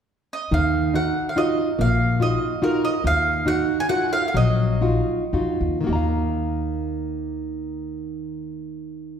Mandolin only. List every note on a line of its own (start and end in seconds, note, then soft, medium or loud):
0.33 0.54 D#5 medium
0.54 0.95 F5 medium
0.95 1.28 F#5 medium
1.29 1.36 F5 soft
1.38 1.80 D#5 medium
1.81 2.23 F5 medium
2.22 2.60 D#5 medium
2.64 2.84 A#4 medium
2.85 3.03 D#5 medium
3.07 3.47 F5 medium
3.48 3.77 F#5 medium
3.80 3.89 G#5 medium
3.89 4.12 F#5 medium
4.13 4.27 F5 medium
4.28 4.35 F5 medium
4.37 5.30 D#5 medium